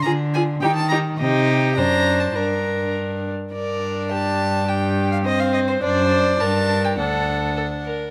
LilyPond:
<<
  \new Staff \with { instrumentName = "Violin" } { \time 2/4 \key g \minor \tempo 4 = 104 bes''8 aes''8 g''16 a''16 bes''8 | ees''4 bes''8. a''16 | bes''4 r4 | d''4 a''4 |
g''8. f''16 ees''16 f''16 ees''16 c''16 | d''4 a''8. g''16 | fis''4. r8 | }
  \new Staff \with { instrumentName = "Violin" } { \time 2/4 \key g \minor aes'8 aes'8 g'8 g'8 | g'4 c''4 | bes'4. r8 | bes'4 g'4 |
g'4 c''4 | c''4 bes'4 | a'4 a'8 bes'8 | }
  \new Staff \with { instrumentName = "Viola" } { \time 2/4 \key g \minor f'8 f'8 ees'8 ees'8 | ees'4 d'4 | d'4. r8 | d'2~ |
d'4 c'4 | d'4 d'4 | d'4. r8 | }
  \new Staff \with { instrumentName = "Cello" } { \clef bass \time 2/4 \key g \minor d4 ees4 | c4 fis,4 | g,4. r8 | g,2~ |
g,2 | fis,4 g,4 | d,4. r8 | }
>>